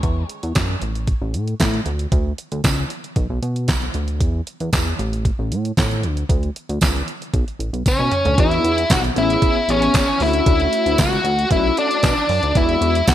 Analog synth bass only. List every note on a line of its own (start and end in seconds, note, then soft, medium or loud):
0.03 0.24 E2 loud
0.43 0.53 E2 loud
0.55 0.76 F#2 medium
0.82 1.13 A1 medium
1.22 1.35 A1 loud
1.34 1.54 A2 medium
1.60 1.81 A2 loud
1.86 2.07 D2 medium
2.12 2.33 D2 loud
2.52 2.62 D2 loud
2.64 2.85 C#2 loud
3.16 3.27 B1 loud
3.30 3.40 B1 loud
3.43 3.70 B2 medium
3.69 3.89 B1 medium
3.95 4.22 D2 medium
4.21 4.41 E2 loud
4.60 4.70 E2 loud
4.73 4.94 E2 loud
4.99 5.31 A1 loud
5.39 5.53 A1 loud
5.51 5.72 A2 medium
5.77 6.05 A2 loud
6.03 6.24 D2 loud
6.29 6.50 D2 loud
6.69 6.79 D2 medium
6.82 7.02 C#2 loud
7.34 7.45 B1 medium
7.59 7.70 A1 medium
7.73 7.83 B1 medium
7.99 8.09 B2 medium
8.25 8.35 D2 loud
8.38 8.59 E2 loud
8.64 8.85 E2 medium
8.90 9.11 B1 loud
9.16 9.37 A1 loud
9.68 9.89 A1 medium
10.20 10.41 D2 loud
10.46 10.67 D2 loud
10.86 10.96 D2 loud
10.99 11.19 C#2 loud
11.24 11.45 D2 loud
11.51 11.72 B1 loud
12.03 12.14 B2 loud
12.29 12.40 F#2 loud
12.43 12.53 D2 loud
12.55 12.76 E2 loud
12.81 13.02 E2 medium
13.08 13.15 B1 loud